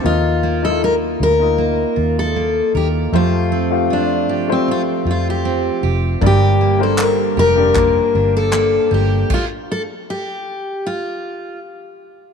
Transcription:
<<
  \new Staff \with { instrumentName = "Steel-string acoustic guitar" } { \time 4/4 \key g \minor \tempo 4 = 78 f'8. a'16 bes'8 bes'4~ bes'16 a'8. g'8 | f'4 d'8. c'16 f'8 f'16 g'8. r8 | g'8. a'16 bes'8 bes'4~ bes'16 a'8. g'8 | f'8 a'8 g'4 f'4 r4 | }
  \new Staff \with { instrumentName = "Upright piano" } { \time 4/4 \key g \minor <bes ees' f' ees''>8. <bes ees' e' f' ees''>8. r16 <bes ees' f' ees''>4.~ <bes ees' f' ees''>16 r8 | <a f' g' c''>8. <a f' g' f''>8. r16 <a f' g' c''>4.~ <a f' g' c''>16 r8 | <bes d' g' d''>8. <bes d' g' c''>8. r16 <bes d' g' d''>4.~ <bes d' g' d''>16 r8 | r1 | }
  \new Staff \with { instrumentName = "Steel-string acoustic guitar" } { \time 4/4 \key g \minor r8 bes8 f'4 bes8 f'8 bes8 bes'8 | f8 c'8 f'8 g'8 c'8 f'8 c'8 g'8 | g,8 bes8 d'8 g'8 bes8 d'8 bes8 g'8 | r1 | }
  \new Staff \with { instrumentName = "Fingered electric bass" } { \clef bass \time 4/4 \key g \minor ees,4. d,4 ees,4 ees,8 | f,4. g,4 f,4 f,,8 | g,,4. f,,4 g,,4 g,,8 | r1 | }
  \new DrumStaff \with { instrumentName = "Drums" } \drummode { \time 4/4 r4 r4 r4 r4 | r4 r4 r4 r4 | bd4 hc4 <hc bd>4 hc4 | <cymc bd>4 r4 r4 r4 | }
>>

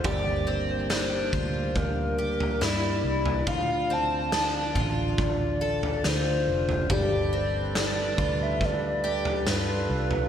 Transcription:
<<
  \new Staff \with { instrumentName = "Soft synth lead" } { \time 4/4 \key g \dorian \tempo 4 = 70 d''8. c''16 c''4 bes'4 d''4 | f''8 a''4 r8 d''4 c''4 | d''4 d''8. e''16 d''4 b'4 | }
  \new Staff \with { instrumentName = "Twelve-string acoustic guitar" } { \time 4/4 \key g \dorian g'8 c'8 d'8 f'4 g'8 e'4 | f'8 c'8 d'8 f'4 a'8 f'4 | g'8 c'8 d'8 f'4 g'8 f'4 | }
  \new Staff \with { instrumentName = "Tonewheel organ" } { \time 4/4 \key g \dorian <g bes d'>1 | <d f'>1 | <g a' b'>1 | }
  \new Staff \with { instrumentName = "Fingered electric bass" } { \clef bass \time 4/4 \key g \dorian g,,4. d,4. g,8 c,8 | d,4. a,,4. d,8 f,,8 | g,,4. d,4. g,8 c,8 | }
  \new DrumStaff \with { instrumentName = "Drums" } \drummode { \time 4/4 <bd tomfh>4 sn8 bd8 <bd tomfh>8. tomfh16 sn8. tomfh16 | <bd tomfh>4 sn8 <bd tomfh>8 <bd tomfh>8. tomfh16 sn8. tomfh16 | <bd tomfh>4 sn8 bd8 <bd tomfh>8. tomfh16 sn8. tomfh16 | }
>>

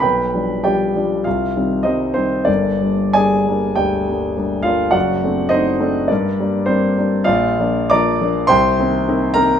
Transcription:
<<
  \new Staff \with { instrumentName = "Grand piano" } { \time 4/4 \key g \phrygian \tempo 4 = 102 <b' g'' b''>4 <g' d'' g''>4 <f' f''>4 <ees' c'' ees''>8 <c' c''>8 | <d' bes' d''>4 <aes' d'' aes''>4 <g' d'' g''>4. <f' f''>8 | <fis' d'' fis''>4 <ees' c'' ees''>4 <d' bes' d''>4 <c' c''>8 r8 | \key bes \major <f' d'' f''>4 <d'' bes'' d'''>4 <c'' g'' c'''>4. <bes' bes''>8 | }
  \new Staff \with { instrumentName = "Grand piano" } { \time 4/4 \key g \phrygian b,,8 <f g d'>8 <f g d'>8 <f g d'>8 c,8 <ees g c'>8 <ees g c'>8 <ees g>8 | <g,, g,>8 <g bes d'>8 <g bes d'>8 <g bes d'>8 d,8 <g bes d'>8 <g bes d'>8 <g bes d'>8 | <fis,, fis,>8 <a c' d'>8 <a c' d'>8 <a c' d'>8 g,8 <g bes d'>8 <g bes d'>8 <g bes d'>8 | \key bes \major bes,,8 <f bes d'>8 <f bes d'>8 <f bes d'>8 c,8 <ees bes c'>8 <ees bes c'>8 <ees bes c'>8 | }
>>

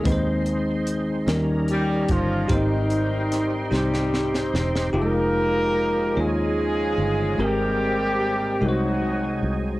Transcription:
<<
  \new Staff \with { instrumentName = "Tine electric piano" } { \time 6/8 \key aes \major \tempo 4. = 49 <aes c' ees' ces'' c''>4 r8 <g des' ees' bes'>4 r8 | <bes c' ees' g' c''>4 r8 <c' ees' g' c''>4 r8 | <aes ees' f' g'>4 r8 <g aes ees' f' des''>4 r8 | <aes c' g' bes'>4 r8 <aes ees' ges' bes' c''>4 r8 | }
  \new Staff \with { instrumentName = "Tine electric piano" } { \clef bass \time 6/8 \key aes \major ees4. ees4. | aes,4. r4. | r4. ees4. | aes,4. c4. | }
  \new Staff \with { instrumentName = "Tonewheel organ" } { \time 6/8 \key aes \major <aes c' ees' c''>4. <g des' ees' bes'>4. | <c' ees' g' c''>2. | <f aes ees' g'>4. <f des' ees' aes'>4. | <aes c' g' bes'>4. <ges c' ees' aes'>4. | }
  \new Staff \with { instrumentName = "Horn section" } { \time 6/8 \key aes \major << { r2 <g g'>8 <f f'>8 | <ees ees'>4. <g g'>4 r8 | <bes bes'>4. <aes aes'>4. | <g g'>4. <ges ges'>4 r8 | } \\ { r2. | <g c'>4. <c' ees'>4. | <ees' g'>4. <des' f'>4. | <bes c'>4. ees'4. | } >> }
  \new Staff \with { instrumentName = "Fingered electric bass" } { \clef bass \time 6/8 \key aes \major ees,4. ees,4 g,,8 | aes,,4. c,4 fes,,8 | f,,4. ees,4 g,,8 | aes,,4. c,4 c,8 | }
  \new DrumStaff \with { instrumentName = "Drums" } \drummode { \time 6/8 <hh bd>8 hh8 hh8 <hh sn>8 hh8 <hh bd>8 | <hh bd>8 hh8 <hh sn>8 sn16 sn16 sn16 sn16 sn16 sn16 | r4. r4. | r4. r4. | }
>>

